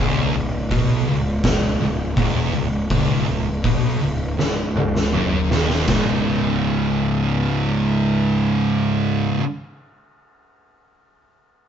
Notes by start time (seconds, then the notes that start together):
Already playing: C#2
0.00 C#1
0.34 C#1 C#2
0.70 B1 B2, kick, open hi-hat
1.07 C#1 C#2
1.44 C#1 C#2, kick, snare, open hi-hat
1.80 C#1 C#2
2.17 E1 E2, kick, open hi-hat
2.53 C#1 C#2
2.90 C#1 C#2, kick, open hi-hat
3.27 C#1 C#2
3.64 B1 B2, kick, open hi-hat
4.02 C#1 C#2
4.38 C#1 C#2, snare
4.76 C#1 C#2, mid tom
4.95 snare
5.13 F#1 F#2, mid tom
5.51 D#1 D#2, snare
5.70 snare
5.87 C#1 C#2 G#2, kick, snare, ride bell
5.92 C#3